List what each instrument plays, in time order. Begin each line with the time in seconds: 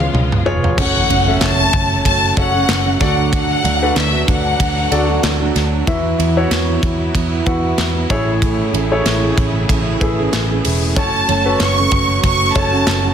Already playing: grand piano C#3 F4 G#4 B4 C#5, string section C#3 F3 G#3 B3 F4, violin section F5
0.00 high tom
0.14 picked electric bass C#2, mid tom
0.32 mid tom
0.46 picked electric bass F1, grand piano F4 G#4 B4 C#5, floor tom
0.64 floor tom
0.76 picked electric bass F#1, steel-string acoustic guitar F#3 A3 C#4 F#4, string section F#3 A3 C#4, grand piano C#4 F#4 A4 C#5, violin section F#5, kick, crash, impact
1.08 picked electric bass F#1, steel-string acoustic guitar F#2 C#3 F#3 A3 C#4 F#4, ride
1.27 grand piano C#4 F#4 A4 E5
1.41 picked electric bass F#1, violin section A5, snare, clap, ride
1.57 steel-string acoustic guitar F#3 A3 C#4 F#4
1.73 picked electric bass F#1, kick, ride
2.04 picked electric bass F#1, steel-string acoustic guitar F#3 A3 C#4 F#4, violin section A5, kick, ride
2.37 picked electric bass F#1, grand piano C#4 F#4 A4 C#5, violin section F#5, kick, ride
2.54 steel-string acoustic guitar F#3 A3 C#4 F#4
2.69 picked electric bass F#1, snare, clap, ride
2.85 steel-string acoustic guitar F#3 A3 C#4 F#4
2.99 picked electric bass D2, steel-string acoustic guitar D3 F#3 A3 D4 F#4, grand piano D3 D4 F#4 A4 D5, string section D4, violin section F#5, kick, snare, ride
3.33 violin section F#5, kick, ride
3.63 picked electric bass D2, steel-string acoustic guitar D3 F#3 A3 D4 F#4, ride
3.82 grand piano D4 F#4 A4 B4
3.96 picked electric bass D2, violin section E5, snare, clap, ride
4.12 steel-string acoustic guitar A3 D4 F#4
4.28 picked electric bass D2, violin section F#5, kick, ride
4.58 picked electric bass D2, steel-string acoustic guitar F#3 A3 D4 F#4, kick, ride
4.91 picked electric bass D2, grand piano D4 F#4 A4 D5, ride
5.08 steel-string acoustic guitar A3 D4 F#4
5.23 picked electric bass D2, snare, clap, ride
5.40 steel-string acoustic guitar A3 D4 F#4
5.55 picked electric bass D2, snare, ride
5.86 picked electric bass E2, steel-string acoustic guitar E3 B3 E4 F#4, grand piano E3 E4 F#4 B4 E5, string section B3 E4, kick, ride
6.18 picked electric bass E2, steel-string acoustic guitar E3 B3 E4 F#4, ride
6.37 grand piano E4 F#4 B4 C#5
6.51 picked electric bass E2, snare, clap, ride
6.67 steel-string acoustic guitar B3 E4 F#4
6.83 picked electric bass E2, kick, ride
7.13 picked electric bass E2, steel-string acoustic guitar E3 B3 E4 F#4, kick, ride
7.46 picked electric bass E2, grand piano E4 F#4 B4 F#5, kick, ride
7.63 steel-string acoustic guitar B3 E4 F#4
7.78 picked electric bass E2, snare, clap, ride
7.95 steel-string acoustic guitar B3 E4 F#4
8.09 picked electric bass A1, grand piano A2 A3 E4 G#4 C#5, string section C#3 E3 A3 G#4, steel-string acoustic guitar A3 C#4 E4 G#4, kick, ride
8.42 kick, ride
8.73 picked electric bass A1, steel-string acoustic guitar A3 C#4 E4 G#4, ride
8.91 grand piano A3 E4 G#4 C#5
9.05 picked electric bass A1, snare, clap, ride
9.23 steel-string acoustic guitar C#4 E4 G#4
9.38 picked electric bass A1, kick, ride
9.68 picked electric bass A1, steel-string acoustic guitar A3 C#4 E4 G#4, kick, ride
10.01 picked electric bass A1, grand piano A3 E4 G#4 B4, kick, ride
10.18 steel-string acoustic guitar C#4 E4 G#4
10.33 picked electric bass A1, snare, clap, ride
10.50 steel-string acoustic guitar C#4 E4 G#4
10.65 picked electric bass E1, open hi-hat, ride
10.96 picked electric bass F#1, steel-string acoustic guitar F#3 A3 C#4 F#4, string section F#3 C#4, grand piano C#4 F#4 A4 C#5, violin section A5, kick, hi-hat pedal, ride
11.28 picked electric bass F#1, steel-string acoustic guitar F#2 C#3 F#3 A3 C#4 F#4, ride
11.46 grand piano C#4 F#4 A4 B4
11.60 picked electric bass F#1, violin section C#6, snare, clap, ride
11.77 steel-string acoustic guitar F#3 A3 C#4 F#4
11.91 picked electric bass F#1, kick, ride
12.23 picked electric bass F#1, steel-string acoustic guitar F#3 A3 C#4 F#4, violin section C#6, kick, ride
12.55 picked electric bass F#1, grand piano C#4 F#4 A4 C#5, violin section A5, kick, ride
12.72 steel-string acoustic guitar F#3 A3 C#4 F#4
12.87 picked electric bass F#1, snare, clap, ride
13.04 steel-string acoustic guitar F#3 A3 C#4 F#4